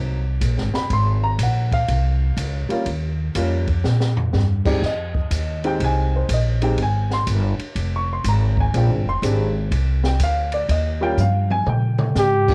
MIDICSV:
0, 0, Header, 1, 6, 480
1, 0, Start_track
1, 0, Key_signature, -3, "major"
1, 0, Tempo, 489396
1, 888, Time_signature, 4, 2, 24, 8
1, 12303, End_track
2, 0, Start_track
2, 0, Title_t, "Flugelhorn"
2, 0, Program_c, 0, 56
2, 11948, Note_on_c, 0, 67, 88
2, 12303, Note_off_c, 0, 67, 0
2, 12303, End_track
3, 0, Start_track
3, 0, Title_t, "Grand piano"
3, 0, Program_c, 1, 0
3, 0, Note_on_c, 1, 54, 66
3, 0, Note_on_c, 1, 58, 61
3, 0, Note_on_c, 1, 60, 61
3, 0, Note_on_c, 1, 63, 74
3, 176, Note_off_c, 1, 54, 0
3, 178, Note_off_c, 1, 58, 0
3, 181, Note_off_c, 1, 60, 0
3, 184, Note_off_c, 1, 63, 0
3, 737, Note_on_c, 1, 83, 91
3, 889, Note_off_c, 1, 83, 0
3, 914, Note_on_c, 1, 84, 100
3, 1209, Note_off_c, 1, 84, 0
3, 1213, Note_on_c, 1, 82, 91
3, 1366, Note_off_c, 1, 82, 0
3, 1404, Note_on_c, 1, 78, 74
3, 1695, Note_off_c, 1, 78, 0
3, 1701, Note_on_c, 1, 77, 96
3, 2637, Note_on_c, 1, 55, 72
3, 2648, Note_on_c, 1, 58, 66
3, 2652, Note_on_c, 1, 61, 57
3, 2660, Note_on_c, 1, 65, 78
3, 2777, Note_off_c, 1, 77, 0
3, 2788, Note_off_c, 1, 55, 0
3, 2793, Note_off_c, 1, 58, 0
3, 2795, Note_off_c, 1, 61, 0
3, 2799, Note_off_c, 1, 65, 0
3, 3283, Note_on_c, 1, 55, 62
3, 3289, Note_on_c, 1, 58, 55
3, 3295, Note_on_c, 1, 61, 59
3, 3300, Note_on_c, 1, 65, 67
3, 3572, Note_off_c, 1, 55, 0
3, 3575, Note_off_c, 1, 58, 0
3, 3578, Note_off_c, 1, 61, 0
3, 3581, Note_off_c, 1, 65, 0
3, 4562, Note_on_c, 1, 56, 64
3, 4567, Note_on_c, 1, 60, 61
3, 4576, Note_on_c, 1, 63, 61
3, 4576, Note_on_c, 1, 74, 78
3, 4578, Note_on_c, 1, 67, 75
3, 4710, Note_off_c, 1, 56, 0
3, 4713, Note_off_c, 1, 60, 0
3, 4717, Note_off_c, 1, 63, 0
3, 4718, Note_off_c, 1, 67, 0
3, 4729, Note_off_c, 1, 74, 0
3, 4766, Note_on_c, 1, 75, 80
3, 5507, Note_off_c, 1, 75, 0
3, 5534, Note_on_c, 1, 56, 79
3, 5535, Note_on_c, 1, 60, 67
3, 5539, Note_on_c, 1, 63, 66
3, 5549, Note_on_c, 1, 67, 76
3, 5559, Note_on_c, 1, 79, 94
3, 5701, Note_off_c, 1, 79, 0
3, 5732, Note_on_c, 1, 80, 96
3, 6020, Note_off_c, 1, 80, 0
3, 6042, Note_on_c, 1, 72, 52
3, 6141, Note_off_c, 1, 56, 0
3, 6141, Note_off_c, 1, 60, 0
3, 6143, Note_off_c, 1, 63, 0
3, 6148, Note_off_c, 1, 67, 0
3, 6182, Note_off_c, 1, 72, 0
3, 6217, Note_on_c, 1, 75, 73
3, 6492, Note_on_c, 1, 56, 69
3, 6494, Note_on_c, 1, 60, 59
3, 6499, Note_on_c, 1, 63, 67
3, 6503, Note_off_c, 1, 75, 0
3, 6506, Note_on_c, 1, 67, 72
3, 6514, Note_on_c, 1, 79, 76
3, 6635, Note_off_c, 1, 56, 0
3, 6636, Note_off_c, 1, 60, 0
3, 6639, Note_off_c, 1, 63, 0
3, 6643, Note_off_c, 1, 67, 0
3, 6658, Note_off_c, 1, 79, 0
3, 6694, Note_on_c, 1, 80, 93
3, 6981, Note_off_c, 1, 80, 0
3, 6996, Note_on_c, 1, 84, 99
3, 7084, Note_off_c, 1, 84, 0
3, 7805, Note_on_c, 1, 85, 83
3, 7943, Note_off_c, 1, 85, 0
3, 7971, Note_on_c, 1, 84, 75
3, 8106, Note_off_c, 1, 84, 0
3, 8126, Note_on_c, 1, 82, 82
3, 8417, Note_off_c, 1, 82, 0
3, 8438, Note_on_c, 1, 80, 86
3, 8567, Note_on_c, 1, 56, 56
3, 8572, Note_on_c, 1, 60, 46
3, 8574, Note_on_c, 1, 62, 53
3, 8580, Note_off_c, 1, 80, 0
3, 8585, Note_on_c, 1, 65, 62
3, 8606, Note_on_c, 1, 79, 78
3, 8854, Note_off_c, 1, 56, 0
3, 8857, Note_off_c, 1, 60, 0
3, 8858, Note_off_c, 1, 62, 0
3, 8864, Note_off_c, 1, 65, 0
3, 8897, Note_off_c, 1, 79, 0
3, 8912, Note_on_c, 1, 84, 104
3, 9002, Note_off_c, 1, 84, 0
3, 9048, Note_on_c, 1, 56, 59
3, 9052, Note_on_c, 1, 62, 61
3, 9054, Note_on_c, 1, 60, 59
3, 9061, Note_on_c, 1, 67, 68
3, 9335, Note_off_c, 1, 56, 0
3, 9337, Note_off_c, 1, 62, 0
3, 9338, Note_off_c, 1, 60, 0
3, 9342, Note_off_c, 1, 67, 0
3, 9863, Note_on_c, 1, 79, 81
3, 10013, Note_off_c, 1, 79, 0
3, 10038, Note_on_c, 1, 77, 91
3, 10333, Note_off_c, 1, 77, 0
3, 10337, Note_on_c, 1, 74, 83
3, 10489, Note_off_c, 1, 74, 0
3, 10507, Note_on_c, 1, 75, 80
3, 10797, Note_on_c, 1, 55, 76
3, 10801, Note_on_c, 1, 58, 71
3, 10804, Note_on_c, 1, 61, 73
3, 10807, Note_off_c, 1, 75, 0
3, 10810, Note_on_c, 1, 65, 84
3, 10815, Note_on_c, 1, 79, 112
3, 10948, Note_off_c, 1, 55, 0
3, 10950, Note_off_c, 1, 58, 0
3, 10952, Note_off_c, 1, 61, 0
3, 10954, Note_off_c, 1, 65, 0
3, 10968, Note_off_c, 1, 79, 0
3, 10990, Note_on_c, 1, 77, 83
3, 11288, Note_off_c, 1, 77, 0
3, 11294, Note_on_c, 1, 80, 98
3, 11448, Note_off_c, 1, 80, 0
3, 11470, Note_on_c, 1, 79, 84
3, 12236, Note_on_c, 1, 55, 58
3, 12239, Note_on_c, 1, 58, 51
3, 12247, Note_on_c, 1, 65, 65
3, 12248, Note_on_c, 1, 62, 55
3, 12300, Note_off_c, 1, 79, 0
3, 12303, Note_off_c, 1, 55, 0
3, 12303, Note_off_c, 1, 58, 0
3, 12303, Note_off_c, 1, 62, 0
3, 12303, Note_off_c, 1, 65, 0
3, 12303, End_track
4, 0, Start_track
4, 0, Title_t, "Upright bass"
4, 0, Program_c, 2, 32
4, 0, Note_on_c, 2, 36, 86
4, 388, Note_off_c, 2, 36, 0
4, 403, Note_on_c, 2, 34, 89
4, 570, Note_off_c, 2, 34, 0
4, 570, Note_on_c, 2, 32, 55
4, 721, Note_off_c, 2, 32, 0
4, 727, Note_on_c, 2, 30, 64
4, 876, Note_off_c, 2, 30, 0
4, 882, Note_on_c, 2, 32, 83
4, 1351, Note_off_c, 2, 32, 0
4, 1360, Note_on_c, 2, 34, 89
4, 1829, Note_off_c, 2, 34, 0
4, 1847, Note_on_c, 2, 36, 90
4, 2313, Note_off_c, 2, 36, 0
4, 2321, Note_on_c, 2, 37, 94
4, 2620, Note_off_c, 2, 37, 0
4, 2801, Note_on_c, 2, 39, 82
4, 3271, Note_off_c, 2, 39, 0
4, 3284, Note_on_c, 2, 41, 86
4, 3752, Note_off_c, 2, 41, 0
4, 3773, Note_on_c, 2, 46, 82
4, 4237, Note_off_c, 2, 46, 0
4, 4254, Note_on_c, 2, 43, 89
4, 4717, Note_off_c, 2, 43, 0
4, 4730, Note_on_c, 2, 41, 83
4, 5195, Note_off_c, 2, 41, 0
4, 5204, Note_on_c, 2, 39, 79
4, 5672, Note_off_c, 2, 39, 0
4, 5687, Note_on_c, 2, 36, 84
4, 6154, Note_off_c, 2, 36, 0
4, 6166, Note_on_c, 2, 34, 90
4, 6633, Note_off_c, 2, 34, 0
4, 6647, Note_on_c, 2, 32, 83
4, 7114, Note_off_c, 2, 32, 0
4, 7128, Note_on_c, 2, 31, 88
4, 7424, Note_off_c, 2, 31, 0
4, 7604, Note_on_c, 2, 29, 88
4, 8072, Note_off_c, 2, 29, 0
4, 8083, Note_on_c, 2, 32, 96
4, 8552, Note_off_c, 2, 32, 0
4, 8569, Note_on_c, 2, 34, 86
4, 8730, Note_off_c, 2, 34, 0
4, 8730, Note_on_c, 2, 32, 58
4, 8876, Note_off_c, 2, 32, 0
4, 8882, Note_on_c, 2, 29, 65
4, 9034, Note_off_c, 2, 29, 0
4, 9043, Note_on_c, 2, 32, 91
4, 9512, Note_off_c, 2, 32, 0
4, 9526, Note_on_c, 2, 36, 94
4, 9993, Note_off_c, 2, 36, 0
4, 10001, Note_on_c, 2, 38, 87
4, 10470, Note_off_c, 2, 38, 0
4, 10480, Note_on_c, 2, 39, 93
4, 10950, Note_off_c, 2, 39, 0
4, 10958, Note_on_c, 2, 43, 85
4, 11429, Note_off_c, 2, 43, 0
4, 11441, Note_on_c, 2, 46, 81
4, 11911, Note_off_c, 2, 46, 0
4, 11922, Note_on_c, 2, 44, 93
4, 12303, Note_off_c, 2, 44, 0
4, 12303, End_track
5, 0, Start_track
5, 0, Title_t, "Muted upright bass strokes"
5, 2645, Note_on_c, 9, 29, 39
5, 2743, Note_off_c, 9, 29, 0
5, 7447, Note_on_c, 9, 29, 38
5, 7545, Note_off_c, 9, 29, 0
5, 12303, End_track
6, 0, Start_track
6, 0, Title_t, "Drums"
6, 403, Note_on_c, 9, 36, 22
6, 404, Note_on_c, 9, 44, 55
6, 404, Note_on_c, 9, 51, 66
6, 501, Note_off_c, 9, 36, 0
6, 502, Note_off_c, 9, 44, 0
6, 502, Note_off_c, 9, 51, 0
6, 565, Note_on_c, 9, 38, 29
6, 663, Note_off_c, 9, 38, 0
6, 724, Note_on_c, 9, 38, 47
6, 822, Note_off_c, 9, 38, 0
6, 883, Note_on_c, 9, 36, 26
6, 884, Note_on_c, 9, 51, 57
6, 981, Note_off_c, 9, 36, 0
6, 982, Note_off_c, 9, 51, 0
6, 1361, Note_on_c, 9, 44, 59
6, 1361, Note_on_c, 9, 51, 76
6, 1364, Note_on_c, 9, 36, 18
6, 1459, Note_off_c, 9, 44, 0
6, 1459, Note_off_c, 9, 51, 0
6, 1462, Note_off_c, 9, 36, 0
6, 1684, Note_on_c, 9, 36, 45
6, 1689, Note_on_c, 9, 51, 45
6, 1782, Note_off_c, 9, 36, 0
6, 1787, Note_off_c, 9, 51, 0
6, 1845, Note_on_c, 9, 36, 19
6, 1847, Note_on_c, 9, 51, 59
6, 1943, Note_off_c, 9, 36, 0
6, 1945, Note_off_c, 9, 51, 0
6, 2325, Note_on_c, 9, 36, 18
6, 2327, Note_on_c, 9, 44, 57
6, 2327, Note_on_c, 9, 51, 73
6, 2423, Note_off_c, 9, 36, 0
6, 2425, Note_off_c, 9, 44, 0
6, 2425, Note_off_c, 9, 51, 0
6, 2649, Note_on_c, 9, 51, 46
6, 2747, Note_off_c, 9, 51, 0
6, 2803, Note_on_c, 9, 51, 53
6, 2804, Note_on_c, 9, 36, 19
6, 2901, Note_off_c, 9, 51, 0
6, 2902, Note_off_c, 9, 36, 0
6, 3284, Note_on_c, 9, 44, 62
6, 3284, Note_on_c, 9, 51, 78
6, 3287, Note_on_c, 9, 36, 24
6, 3382, Note_off_c, 9, 44, 0
6, 3382, Note_off_c, 9, 51, 0
6, 3385, Note_off_c, 9, 36, 0
6, 3603, Note_on_c, 9, 51, 44
6, 3604, Note_on_c, 9, 36, 48
6, 3701, Note_off_c, 9, 51, 0
6, 3702, Note_off_c, 9, 36, 0
6, 3766, Note_on_c, 9, 38, 49
6, 3864, Note_off_c, 9, 38, 0
6, 3927, Note_on_c, 9, 38, 52
6, 4025, Note_off_c, 9, 38, 0
6, 4087, Note_on_c, 9, 43, 76
6, 4185, Note_off_c, 9, 43, 0
6, 4247, Note_on_c, 9, 44, 62
6, 4248, Note_on_c, 9, 38, 55
6, 4345, Note_off_c, 9, 44, 0
6, 4346, Note_off_c, 9, 38, 0
6, 4565, Note_on_c, 9, 49, 71
6, 4567, Note_on_c, 9, 36, 77
6, 4663, Note_off_c, 9, 49, 0
6, 4665, Note_off_c, 9, 36, 0
6, 4729, Note_on_c, 9, 36, 23
6, 4733, Note_on_c, 9, 38, 38
6, 4827, Note_off_c, 9, 36, 0
6, 4831, Note_off_c, 9, 38, 0
6, 5047, Note_on_c, 9, 36, 52
6, 5145, Note_off_c, 9, 36, 0
6, 5206, Note_on_c, 9, 44, 66
6, 5206, Note_on_c, 9, 51, 70
6, 5209, Note_on_c, 9, 36, 19
6, 5304, Note_off_c, 9, 44, 0
6, 5304, Note_off_c, 9, 51, 0
6, 5307, Note_off_c, 9, 36, 0
6, 5529, Note_on_c, 9, 51, 42
6, 5627, Note_off_c, 9, 51, 0
6, 5689, Note_on_c, 9, 51, 62
6, 5691, Note_on_c, 9, 36, 21
6, 5787, Note_off_c, 9, 51, 0
6, 5789, Note_off_c, 9, 36, 0
6, 6168, Note_on_c, 9, 44, 61
6, 6168, Note_on_c, 9, 51, 77
6, 6169, Note_on_c, 9, 36, 25
6, 6266, Note_off_c, 9, 44, 0
6, 6266, Note_off_c, 9, 51, 0
6, 6267, Note_off_c, 9, 36, 0
6, 6489, Note_on_c, 9, 51, 50
6, 6587, Note_off_c, 9, 51, 0
6, 6646, Note_on_c, 9, 51, 53
6, 6648, Note_on_c, 9, 36, 24
6, 6744, Note_off_c, 9, 51, 0
6, 6746, Note_off_c, 9, 36, 0
6, 6968, Note_on_c, 9, 38, 37
6, 7066, Note_off_c, 9, 38, 0
6, 7127, Note_on_c, 9, 44, 66
6, 7127, Note_on_c, 9, 51, 68
6, 7128, Note_on_c, 9, 36, 22
6, 7225, Note_off_c, 9, 44, 0
6, 7225, Note_off_c, 9, 51, 0
6, 7227, Note_off_c, 9, 36, 0
6, 7446, Note_on_c, 9, 51, 44
6, 7544, Note_off_c, 9, 51, 0
6, 7606, Note_on_c, 9, 51, 62
6, 7607, Note_on_c, 9, 36, 21
6, 7704, Note_off_c, 9, 51, 0
6, 7705, Note_off_c, 9, 36, 0
6, 8084, Note_on_c, 9, 44, 57
6, 8084, Note_on_c, 9, 51, 76
6, 8087, Note_on_c, 9, 36, 21
6, 8182, Note_off_c, 9, 44, 0
6, 8182, Note_off_c, 9, 51, 0
6, 8185, Note_off_c, 9, 36, 0
6, 8406, Note_on_c, 9, 36, 53
6, 8504, Note_off_c, 9, 36, 0
6, 8569, Note_on_c, 9, 36, 18
6, 8571, Note_on_c, 9, 51, 57
6, 8667, Note_off_c, 9, 36, 0
6, 8669, Note_off_c, 9, 51, 0
6, 9047, Note_on_c, 9, 36, 19
6, 9051, Note_on_c, 9, 44, 73
6, 9051, Note_on_c, 9, 51, 68
6, 9146, Note_off_c, 9, 36, 0
6, 9149, Note_off_c, 9, 44, 0
6, 9149, Note_off_c, 9, 51, 0
6, 9527, Note_on_c, 9, 36, 23
6, 9530, Note_on_c, 9, 51, 59
6, 9625, Note_off_c, 9, 36, 0
6, 9628, Note_off_c, 9, 51, 0
6, 9845, Note_on_c, 9, 38, 57
6, 9943, Note_off_c, 9, 38, 0
6, 9999, Note_on_c, 9, 44, 66
6, 9999, Note_on_c, 9, 51, 75
6, 10004, Note_on_c, 9, 36, 27
6, 10097, Note_off_c, 9, 44, 0
6, 10097, Note_off_c, 9, 51, 0
6, 10102, Note_off_c, 9, 36, 0
6, 10316, Note_on_c, 9, 51, 50
6, 10414, Note_off_c, 9, 51, 0
6, 10483, Note_on_c, 9, 36, 27
6, 10485, Note_on_c, 9, 51, 67
6, 10582, Note_off_c, 9, 36, 0
6, 10583, Note_off_c, 9, 51, 0
6, 10959, Note_on_c, 9, 44, 55
6, 10960, Note_on_c, 9, 48, 52
6, 11057, Note_off_c, 9, 44, 0
6, 11058, Note_off_c, 9, 48, 0
6, 11283, Note_on_c, 9, 48, 68
6, 11381, Note_off_c, 9, 48, 0
6, 11441, Note_on_c, 9, 47, 70
6, 11539, Note_off_c, 9, 47, 0
6, 11756, Note_on_c, 9, 47, 87
6, 11854, Note_off_c, 9, 47, 0
6, 11921, Note_on_c, 9, 44, 60
6, 11922, Note_on_c, 9, 38, 56
6, 12019, Note_off_c, 9, 44, 0
6, 12020, Note_off_c, 9, 38, 0
6, 12243, Note_on_c, 9, 49, 83
6, 12244, Note_on_c, 9, 36, 78
6, 12303, Note_off_c, 9, 36, 0
6, 12303, Note_off_c, 9, 49, 0
6, 12303, End_track
0, 0, End_of_file